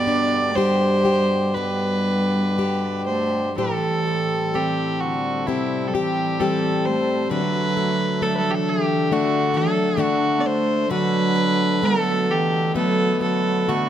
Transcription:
0.00 3.58 G2 medium
0.00 3.54 B2 medium
0.00 3.54 D3 medium
0.00 0.56 B3 medium
0.00 3.54 G4 medium
0.00 0.57 D5 loud
0.07 0.55 D4 medium
0.54 1.54 G3 medium
0.54 2.57 D4 medium
0.54 1.05 G4 medium
0.54 1.56 C5 medium
1.05 2.58 G4 medium
1.54 3.07 G3 medium
1.54 2.58 B3 soft
1.54 3.05 B4 medium
2.58 3.68 D4 soft
2.58 3.58 G4 medium
3.06 3.54 A3 medium
3.06 3.53 C5 medium
3.57 7.32 A2 medium
3.57 4.56 E3 medium
3.57 7.29 G3 medium
3.57 7.28 C4 medium
3.57 4.55 G4 soft
3.57 4.56 A4 medium
3.57 12.72 A4 medium
4.08 4.53 G3 soft
4.54 5.04 E3 medium
4.54 5.46 G3 soft
4.54 5.47 C4 soft
4.54 5.02 G4 medium
5.01 5.51 D3 medium
5.01 5.48 F#4 medium
5.47 5.90 C3 medium
5.47 6.40 G3 soft
5.47 6.39 C4 medium
5.47 5.89 E4 medium
5.47 5.94 G4 soft
5.88 5.96 F#3 soft
5.88 5.95 A4 medium
5.93 6.40 E3 medium
5.93 6.41 G4 medium
6.40 6.87 E3 medium
6.40 7.41 G3 soft
6.40 7.41 C4 medium
6.40 7.31 G4 medium
6.40 6.87 A4 medium
6.85 7.30 A3 medium
6.85 7.31 C5 medium
7.30 10.89 D3 medium
7.30 8.22 F#3 medium
7.30 10.87 A3 medium
7.30 10.87 D4 medium
7.30 9.13 F#4 medium
7.30 8.24 B4 loud
7.77 8.22 A3 medium
8.22 8.34 F#3 medium
8.22 9.11 A3 soft
8.22 9.12 D4 soft
8.22 8.37 A4 medium
8.32 8.49 F#3 medium
8.32 8.37 G3 soft
8.32 8.40 B4 medium
8.38 8.52 A4 medium
8.48 8.51 E3 soft
8.48 8.68 F#3 medium
8.48 8.56 G4 medium
8.55 8.71 A4 medium
8.67 9.10 E3 medium
8.67 9.14 G4 medium
9.09 9.57 D3 medium
9.09 9.97 A3 medium
9.09 9.98 D4 medium
9.09 9.58 F#4 medium
9.13 9.54 F#4 medium
9.54 10.02 F#3 medium
9.54 9.99 F#4 medium
9.54 10.02 A4 medium
9.97 10.40 D3 medium
9.97 11.35 A3 medium
9.97 11.83 D4 medium
9.97 10.91 F#4 medium
9.97 10.42 F#4 medium
10.38 10.47 B3 medium
10.38 10.48 D5 medium
10.46 10.91 A3 medium
10.46 10.91 C5 medium
10.91 13.89 B2 medium
10.91 13.89 D3 medium
10.91 11.83 F#3 medium
10.91 11.83 F#4 soft
10.91 11.86 B4 loud
11.36 11.81 A3 medium
11.83 12.30 F#3 medium
11.83 12.74 A3 medium
11.83 12.75 B3 medium
11.83 12.32 A4 loud
12.29 12.75 E3 medium
12.29 12.75 G4 medium
12.75 13.19 F#3 medium
12.75 13.68 A3 medium
12.75 13.69 B3 medium
12.75 13.20 F#4 medium
12.75 13.19 A4 medium
12.75 13.89 B4 medium
13.21 13.69 F#3 medium
13.21 13.68 F#4 medium
13.21 13.70 A4 medium
13.67 13.89 D3 medium
13.67 13.89 A3 medium
13.67 13.89 B3 soft
13.67 13.89 F#4 medium

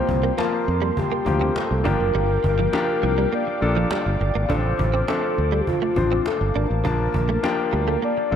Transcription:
0.00 0.27 F3 medium
0.00 0.27 A#3 medium
0.00 4.46 A#3 medium
0.00 0.27 C4 medium
0.00 0.27 G4 medium
0.00 0.35 C5 loud
0.00 6.81 F5 medium
0.00 4.46 G5 medium
0.00 1.83 C6 medium
0.09 0.31 C2 medium
0.09 muted clean electric guitar stroke soft
0.09 cajon bass medium
0.23 0.34 A#3 medium
0.38 1.10 F3 medium
0.38 1.10 A#3 medium
0.38 0.48 A#3 medium
0.38 1.10 C4 medium
0.38 1.00 A#4 medium
0.38 1.10 A5 medium
0.38 cajon slap medium
0.52 muted clean electric guitar stroke soft
0.68 0.90 F2 medium
0.68 cajon slap soft
0.82 0.92 G3 medium
0.97 1.59 G4 loud
0.97 cajon bass medium
0.97 cajon slap medium
1.12 1.22 A#3 medium
1.12 cajon slap soft
1.25 1.48 D2 medium
1.25 1.82 F3 medium
1.25 1.83 A#3 medium
1.25 1.85 C4 medium
1.25 1.84 G4 medium
1.25 muted clean electric guitar stroke soft
1.25 cajon bass medium
1.41 1.52 C4 medium
1.56 1.86 A4 loud
1.56 cajon slap medium
1.71 1.82 C2 medium
1.84 1.96 G1 medium
1.84 2.57 F3 medium
1.84 2.57 A#3 medium
1.84 2.57 D4 medium
1.84 1.96 D4 medium
1.84 2.57 G4 medium
1.84 3.29 A#4 loud
1.84 8.36 D6 medium
1.84 cajon bass medium
2.00 2.11 F#1 medium
2.14 2.37 G1 medium
2.14 2.25 G3 medium
2.14 cajon slap soft
2.44 2.66 G1 medium
2.44 muted clean electric guitar stroke soft
2.44 cajon bass medium
2.59 2.69 F3 medium
2.73 3.45 F3 medium
2.73 3.45 A#3 medium
2.73 3.46 D4 medium
2.73 3.46 G4 medium
2.73 muted clean electric guitar stroke soft
2.73 cajon slap medium
3.03 3.25 C2 medium
3.03 3.14 F3 medium
3.03 cajon slap soft
3.18 3.28 G3 medium
3.32 3.43 A#3 medium
3.32 3.88 D5 loud
3.32 cajon slap medium
3.46 muted clean electric guitar stroke soft
3.46 cajon slap soft
3.61 3.84 A#1 medium
3.61 4.33 F3 medium
3.61 4.34 A#3 medium
3.61 4.34 D4 medium
3.61 4.34 A4 medium
3.61 cajon slap soft
3.77 3.87 F3 medium
3.91 4.02 G3 medium
3.91 4.52 D5 loud
3.91 cajon slap loud
4.06 4.17 G1 medium
4.20 4.31 G1 medium
4.20 muted clean electric guitar stroke soft
4.20 cajon slap soft
4.35 4.46 G#1 medium
4.35 4.46 A#3 medium
4.49 4.72 A1 loud
4.49 4.97 F3 medium
4.49 4.97 C4 medium
4.49 4.98 D4 medium
4.49 4.60 D4 medium
4.49 4.98 A4 medium
4.49 6.83 C5 medium
4.49 5.09 C5 loud
4.49 8.36 A5 medium
4.49 cajon bass loud
4.79 5.01 A1 medium
4.79 muted clean electric guitar stroke soft
4.79 cajon bass medium
4.94 5.04 C4 medium
5.08 5.80 F3 medium
5.08 5.81 C4 medium
5.08 5.19 C4 medium
5.08 5.81 D4 medium
5.08 5.81 A4 medium
5.08 5.62 A4 medium
5.08 cajon slap loud
5.23 muted clean electric guitar stroke soft
5.38 5.60 D2 medium
5.38 cajon slap soft
5.52 5.63 G3 medium
5.61 5.70 G4 medium
5.67 6.29 F4 medium
5.67 cajon bass medium
5.67 cajon slap medium
5.82 5.92 A3 medium
5.82 cajon slap soft
5.96 6.19 A1 medium
5.96 6.69 F3 medium
5.96 6.69 C4 medium
5.96 6.69 D4 medium
5.96 6.69 C5 medium
5.96 muted clean electric guitar stroke soft
5.96 cajon bass medium
6.12 6.22 C4 medium
6.26 6.55 A4 loud
6.26 cajon slap medium
6.41 6.52 G1 medium
6.55 6.67 G#1 medium
6.55 6.66 D4 medium
6.55 7.99 A#4 loud
6.55 cajon slap soft
6.70 6.81 A1 medium
6.84 7.07 A#1 medium
6.84 7.33 F3 medium
6.84 7.33 A#3 medium
6.84 8.36 A#3 medium
6.84 6.95 A#3 medium
6.84 7.33 D4 medium
6.84 8.36 F5 medium
6.84 7.33 A5 medium
6.84 cajon bass loud
7.14 7.36 A#1 medium
7.14 muted clean electric guitar stroke soft
7.14 cajon bass medium
7.29 7.40 A3 medium
7.43 8.16 F3 medium
7.43 8.16 A#3 medium
7.43 8.16 D4 medium
7.43 8.16 G4 medium
7.43 muted clean electric guitar stroke soft
7.43 cajon slap medium
7.73 7.95 D2 medium
7.73 7.83 G3 medium
7.73 cajon slap soft
7.88 7.98 A3 medium
8.02 8.13 A#3 medium
8.02 8.36 D5 loud
8.02 cajon slap medium
8.17 muted clean electric guitar stroke soft
8.17 cajon slap soft
8.31 8.36 A#1 medium
8.31 8.36 F3 medium
8.31 8.36 A#3 medium
8.31 8.36 D4 medium
8.31 8.36 A4 medium
8.31 cajon slap soft

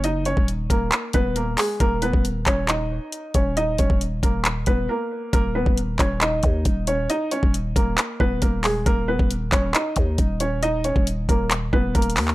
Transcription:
0.00 0.35 F#1 loud
0.00 closed hi-hat medium
0.04 0.25 D#4 medium
0.04 0.24 D#5 loud
0.25 0.47 C#4 medium
0.25 0.46 C#5 medium
0.25 closed hi-hat medium
0.37 0.69 D#1 loud
0.37 kick medium
0.48 closed hi-hat medium
0.70 0.91 D#1 loud
0.70 1.12 A#3 medium
0.70 1.11 A#4 medium
0.70 kick medium
0.70 closed hi-hat medium
0.92 clap loud
0.92 closed hi-hat medium
1.13 1.56 D#1 loud
1.13 1.35 B3 medium
1.13 1.34 B4 medium
1.13 kick medium
1.13 closed hi-hat medium
1.36 1.57 A#3 medium
1.36 1.56 A#4 medium
1.36 closed hi-hat medium
1.58 1.79 G#3 medium
1.58 1.78 G#4 medium
1.58 clap loud
1.58 open hi-hat medium
1.80 2.12 D#1 loud
1.80 2.01 A#3 medium
1.80 2.00 A#4 loud
1.80 kick loud
1.80 closed hi-hat medium
2.02 2.23 B3 medium
2.02 2.23 B4 medium
2.02 closed hi-hat medium
2.13 2.45 D#1 loud
2.13 kick loud
2.25 closed hi-hat medium
2.46 2.99 D#1 loud
2.46 2.67 C#4 medium
2.46 2.67 C#5 medium
2.46 kick medium
2.46 clap medium
2.46 closed hi-hat medium
2.68 3.31 D#4 medium
2.68 3.31 D#5 medium
2.68 clap loud
2.68 closed hi-hat medium
3.12 closed hi-hat medium
3.34 3.77 D#1 loud
3.34 3.55 C#4 medium
3.34 3.55 C#5 medium
3.34 kick loud
3.34 closed hi-hat medium
3.57 3.77 D#4 medium
3.57 3.77 D#5 loud
3.57 closed hi-hat medium
3.78 3.89 D#1 loud
3.78 4.00 C#4 medium
3.78 3.99 C#5 medium
3.78 kick medium
3.78 closed hi-hat medium
3.90 4.22 D#1 loud
3.90 kick medium
4.01 closed hi-hat medium
4.23 4.65 D#1 loud
4.23 4.44 A#3 medium
4.23 4.43 A#4 medium
4.23 kick medium
4.23 closed hi-hat medium
4.45 clap loud
4.45 closed hi-hat medium
4.66 4.88 D#1 loud
4.66 4.88 B3 medium
4.66 4.87 B4 medium
4.66 kick medium
4.66 closed hi-hat medium
4.89 5.31 A#3 medium
4.89 5.31 A#4 medium
5.33 5.65 D#1 loud
5.33 5.54 A#3 medium
5.33 5.53 A#4 loud
5.33 kick loud
5.33 closed hi-hat medium
5.55 5.76 B3 medium
5.55 5.75 B4 medium
5.66 5.98 D#1 loud
5.66 kick loud
5.78 closed hi-hat medium
5.99 6.42 D#1 loud
5.99 6.20 C#4 medium
5.99 6.20 C#5 medium
5.99 kick medium
5.99 clap medium
5.99 closed hi-hat medium
6.21 6.84 D#4 medium
6.21 6.84 D#5 medium
6.21 clap loud
6.21 closed hi-hat medium
6.43 6.65 D#2 loud
6.43 kick medium
6.43 closed hi-hat medium
6.65 7.08 D#1 loud
6.65 kick medium
6.65 closed hi-hat medium
6.87 7.08 C#4 medium
6.87 7.08 C#5 medium
6.87 closed hi-hat medium
7.10 7.30 D#4 medium
7.10 7.30 D#5 loud
7.10 closed hi-hat medium
7.31 7.52 C#4 medium
7.31 7.52 C#5 medium
7.31 closed hi-hat medium
7.43 7.75 D#1 loud
7.43 kick loud
7.54 closed hi-hat medium
7.76 7.97 D#1 loud
7.76 8.18 A#3 medium
7.76 8.17 A#4 medium
7.76 kick medium
7.76 closed hi-hat medium
7.98 clap loud
7.98 closed hi-hat medium
8.20 8.41 D#1 loud
8.20 8.41 B3 medium
8.20 8.40 B4 loud
8.20 kick loud
8.42 8.84 D#1 loud
8.42 8.63 A#3 medium
8.42 8.62 A#4 medium
8.42 kick medium
8.42 closed hi-hat medium
8.64 8.85 G#3 medium
8.64 8.84 G#4 medium
8.64 clap loud
8.64 open hi-hat medium
8.86 9.18 D#1 loud
8.86 9.07 A#3 medium
8.86 9.06 A#4 loud
8.86 kick loud
8.86 closed hi-hat medium
9.08 9.29 B3 medium
9.08 9.28 B4 medium
9.19 9.51 D#1 loud
9.19 kick loud
9.31 closed hi-hat medium
9.52 9.74 D#1 loud
9.52 9.73 C#4 medium
9.52 9.73 C#5 medium
9.52 kick medium
9.52 clap loud
9.52 closed hi-hat medium
9.74 10.37 D#4 medium
9.74 10.37 D#5 medium
9.74 clap loud
9.74 closed hi-hat medium
9.96 10.18 D#2 loud
9.96 kick loud
9.96 closed hi-hat medium
10.18 10.93 D#1 loud
10.18 kick medium
10.18 closed hi-hat medium
10.40 10.61 C#4 medium
10.40 10.61 C#5 medium
10.40 closed hi-hat medium
10.63 10.83 D#4 medium
10.63 10.83 D#5 loud
10.63 closed hi-hat medium
10.84 11.05 C#4 medium
10.84 11.05 C#5 medium
10.84 closed hi-hat medium
10.96 11.27 D#1 loud
10.96 kick loud
11.07 closed hi-hat medium
11.29 11.71 D#1 loud
11.29 11.50 A#3 medium
11.29 11.49 A#4 medium
11.29 kick loud
11.29 closed hi-hat medium
11.51 clap loud
11.51 closed hi-hat medium
11.73 11.94 D#1 loud
11.73 11.94 B3 medium
11.73 11.93 B4 medium
11.73 kick loud
11.95 12.19 D#1 loud
11.95 12.35 A#3 medium
11.95 12.35 A#4 medium
11.95 kick medium
11.95 closed hi-hat medium
12.02 closed hi-hat medium
12.10 closed hi-hat medium
12.17 12.35 D#2 loud
12.17 clap loud
12.17 open hi-hat medium
12.28 clap medium

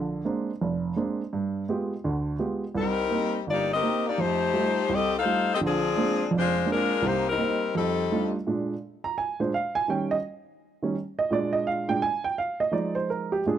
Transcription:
0.00 0.21 A#1 medium
0.00 0.21 D3 medium
0.25 0.49 G#3 soft
0.25 0.49 A#3 soft
0.25 0.50 C4 soft
0.25 0.50 D4 medium
0.61 0.92 F1 medium
0.96 1.21 G#3 medium
0.96 1.21 A#3 soft
0.96 1.21 C4 soft
0.96 1.21 D4 medium
1.33 1.64 G2 medium
1.69 1.92 G#3 soft
1.69 1.93 B3 soft
1.69 1.93 F4 soft
1.69 1.93 G4 medium
2.04 2.35 D2 medium
2.04 2.35 D3 medium
2.39 2.63 G#3 soft
2.39 2.63 B3 soft
2.39 2.63 F4 soft
2.39 2.63 G4 soft
2.75 3.06 C2 medium
2.75 3.44 G3 medium
2.75 3.44 C4 medium
2.75 3.44 D#4 medium
2.75 3.44 A#4 medium
3.11 3.35 A#3 soft
3.11 3.35 C4 soft
3.11 3.35 D#4 soft
3.47 3.78 G1 medium
3.47 3.71 A#3 medium
3.47 3.71 D#4 medium
3.47 3.71 G4 medium
3.47 3.71 D5 loud
3.73 4.04 C4 medium
3.73 4.05 G4 medium
3.73 4.04 A#4 medium
3.73 4.04 D#5 loud
3.82 4.06 A#3 soft
3.82 4.06 C4 soft
3.82 4.07 D#4 medium
4.08 4.19 A#3 medium
4.08 4.20 D#4 medium
4.08 4.20 G4 medium
4.08 4.20 D5 medium
4.18 4.49 F2 medium
4.18 4.91 A3 medium
4.18 4.91 D#4 medium
4.18 4.91 G4 medium
4.18 4.91 C5 loud
4.54 4.77 G3 soft
4.54 4.78 A3 soft
4.54 4.78 D#4 soft
4.54 4.78 F4 soft
4.89 5.20 C2 medium
4.93 5.14 C4 medium
4.93 5.14 G4 medium
4.93 5.14 A4 medium
4.93 5.14 D#5 loud
5.18 5.51 D#4 medium
5.18 5.51 A4 medium
5.18 5.51 C5 medium
5.18 5.51 F5 loud
5.25 5.49 G3 soft
5.25 5.49 A3 soft
5.25 5.49 D#4 soft
5.25 5.49 F4 medium
5.54 5.59 C4 medium
5.54 5.58 G4 medium
5.54 5.58 A4 medium
5.54 5.58 D#5 medium
5.61 5.91 A#1 medium
5.61 5.92 D3 medium
5.65 6.30 F3 medium
5.65 6.30 C4 medium
5.65 6.31 D4 medium
5.65 6.30 G#4 loud
5.97 6.20 G#3 soft
5.97 6.21 A#3 soft
5.97 6.21 C4 soft
5.97 6.21 D4 medium
6.31 6.62 F1 medium
6.31 6.62 F2 medium
6.38 6.68 G#3 medium
6.38 6.68 D4 medium
6.38 6.68 F4 medium
6.38 6.68 C5 loud
6.66 6.91 G#3 soft
6.66 6.91 A#3 soft
6.66 6.91 C4 soft
6.66 6.91 D4 medium
6.71 7.06 G#3 medium
6.71 7.05 D4 medium
6.71 7.05 F4 medium
6.71 7.05 A#4 medium
7.02 7.33 C2 medium
7.02 7.33 C3 medium
7.07 7.27 A#3 medium
7.07 7.27 D#4 medium
7.07 7.27 G4 medium
7.07 7.27 C5 medium
7.28 7.73 G3 medium
7.28 7.73 C4 medium
7.28 7.73 D#4 medium
7.28 7.72 A#4 medium
7.38 7.62 A#3 soft
7.38 7.62 C4 soft
7.38 7.63 D#4 medium
7.75 8.05 F2 medium
7.75 8.30 G3 medium
7.75 8.30 C4 medium
7.75 8.30 D#4 medium
7.75 8.30 A4 medium
8.12 8.35 G3 soft
8.12 8.35 A3 soft
8.12 8.35 D4 soft
8.12 8.35 D#4 soft
8.12 8.35 F4 medium
8.47 8.73 A#2 soft
8.47 8.73 G#3 soft
8.47 8.73 D4 medium
9.04 9.17 A#5 medium
9.18 9.39 G#5 medium
9.40 9.51 A#2 soft
9.40 9.52 G#3 soft
9.40 9.52 D4 soft
9.40 9.53 C5 medium
9.54 9.75 F5 medium
9.75 9.88 G#5 medium
9.88 10.14 D#3 soft
9.88 10.15 G3 soft
9.88 10.15 C#4 medium
9.88 10.11 G5 medium
10.11 10.19 D#5 medium
10.83 10.94 D#3 soft
10.83 10.95 G3 soft
10.83 10.95 C#4 soft
11.19 11.31 D#5 medium
11.30 11.86 A#2 soft
11.30 11.86 G#3 soft
11.30 11.87 D4 medium
11.30 11.54 D5 medium
11.53 11.66 D#5 medium
11.67 11.88 F5 medium
11.88 12.00 A#2 soft
11.88 12.01 G#3 soft
11.88 12.00 D4 soft
11.88 12.02 G5 medium
12.02 12.24 G#5 medium
12.24 12.37 G5 medium
12.38 12.60 F5 medium
12.60 12.73 D#5 medium
12.71 13.40 F3 soft
12.71 13.40 G#3 soft
12.71 13.40 D#4 medium
12.71 12.95 D5 medium
12.95 13.08 C5 medium
13.10 13.31 A#4 medium
13.32 13.44 G4 medium
13.46 13.58 A#2 soft
13.46 13.58 G#3 soft
13.46 13.58 D4 medium
13.46 13.58 G#4 medium

